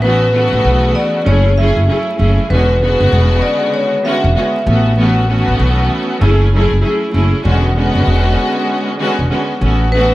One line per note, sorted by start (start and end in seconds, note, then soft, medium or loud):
0.00 0.49 A1 loud
0.00 0.31 E3 loud
0.00 0.31 A3 medium
0.00 0.32 B3 medium
0.00 0.32 C#4 medium
0.00 0.91 B4 loud
0.04 0.32 F#4 loud
0.32 1.26 C#3 medium
0.32 1.25 E3 loud
0.32 1.23 A3 medium
0.32 1.26 B3 medium
0.32 1.27 F#4 loud
0.53 0.63 A1 medium
0.65 0.93 B1 medium
0.95 1.23 D5 medium
1.24 1.72 F#1 loud
1.24 1.54 F#3 medium
1.24 1.54 A3 medium
1.24 1.55 C#4 medium
1.24 1.55 E4 medium
1.24 1.55 G#4 loud
1.24 1.54 C#5 loud
1.57 1.85 F#3 loud
1.57 1.86 A3 medium
1.57 1.86 C#4 medium
1.57 1.87 E4 medium
1.57 1.88 G#4 loud
1.57 2.46 E5 medium
1.77 1.87 F#1 medium
1.86 2.14 F#3 medium
1.86 2.15 A3 medium
1.86 2.16 C#4 medium
1.86 2.17 E4 medium
1.86 2.17 G#4 medium
2.16 2.36 F#1 medium
2.16 2.46 F#3 medium
2.16 2.47 A3 medium
2.16 2.47 C#4 medium
2.16 2.47 E4 medium
2.16 2.48 G#4 medium
2.48 2.96 E1 loud
2.48 2.78 D3 loud
2.48 2.78 G#3 medium
2.48 2.79 B3 medium
2.48 2.79 C#4 medium
2.48 2.79 F#4 loud
2.48 3.39 B4 loud
2.80 3.97 C#3 loud
2.80 3.96 D3 loud
2.80 3.97 G#3 medium
2.80 3.97 B3 loud
2.80 3.98 F#4 loud
3.00 3.11 F#1 medium
3.12 3.40 E1 loud
3.42 3.70 D5 loud
3.74 4.01 C#5 medium
4.03 4.33 D3 loud
4.03 4.33 G#3 medium
4.03 4.33 B3 medium
4.03 4.34 C#4 medium
4.03 4.34 F#4 loud
4.03 4.93 E5 medium
4.24 4.34 E1 medium
4.34 4.64 D3 medium
4.34 4.64 G#3 medium
4.34 4.64 B3 medium
4.34 4.65 C#4 medium
4.34 4.65 F#4 medium
4.65 5.43 A1 loud
4.65 4.95 E3 medium
4.65 4.95 A3 medium
4.65 4.95 B3 medium
4.65 4.96 C#4 medium
4.65 4.96 F#4 medium
4.96 5.26 E3 loud
4.96 5.26 A3 medium
4.96 5.26 B3 medium
4.96 5.27 C#4 medium
4.96 5.27 F#4 loud
5.27 6.20 E3 loud
5.27 6.18 A3 medium
5.27 6.21 B3 medium
5.27 6.19 C#4 medium
5.27 6.22 F#4 loud
5.48 5.58 A1 medium
5.59 5.87 B1 medium
6.19 6.67 F#1 loud
6.19 6.49 F#3 medium
6.19 6.49 A3 medium
6.19 6.49 C#4 medium
6.19 6.50 E4 medium
6.19 6.50 G#4 loud
6.52 6.80 F#3 loud
6.52 6.80 A3 medium
6.52 6.81 C#4 medium
6.52 6.82 E4 medium
6.52 6.82 G#4 loud
6.71 6.82 F#1 medium
6.81 7.09 F#3 medium
6.81 7.10 A3 medium
6.81 7.11 C#4 medium
6.81 7.11 E4 medium
6.81 7.12 G#4 medium
7.10 7.31 F#1 loud
7.10 7.41 F#3 medium
7.10 7.41 A3 medium
7.10 7.42 C#4 medium
7.10 7.42 E4 medium
7.10 7.42 G#4 medium
7.43 7.91 E1 loud
7.43 7.73 D3 loud
7.43 7.73 G#3 medium
7.43 7.73 B3 medium
7.43 7.74 C#4 medium
7.43 7.74 F#4 loud
7.75 8.91 D3 loud
7.75 8.91 G#3 loud
7.75 8.92 B3 medium
7.75 8.92 C#4 medium
7.75 8.93 F#4 loud
7.95 8.06 F#1 medium
8.07 8.35 E1 loud
8.98 9.27 D3 loud
8.98 9.28 G#3 medium
8.98 9.28 B3 medium
8.98 9.29 C#4 medium
8.98 9.29 F#4 loud
9.19 9.29 E1 medium
9.29 9.58 D3 medium
9.29 9.59 G#3 medium
9.29 9.59 B3 medium
9.29 9.59 C#4 medium
9.29 9.60 F#4 medium
9.60 10.14 A1 loud
9.60 9.90 E3 medium
9.60 9.90 A3 medium
9.60 9.90 B3 medium
9.60 9.91 C#4 medium
9.60 9.91 F#4 medium
9.91 10.14 E3 medium
9.91 10.14 A3 medium
9.91 10.14 B3 medium
9.91 10.14 C#4 medium
9.91 10.14 F#4 loud
9.91 10.14 B4 loud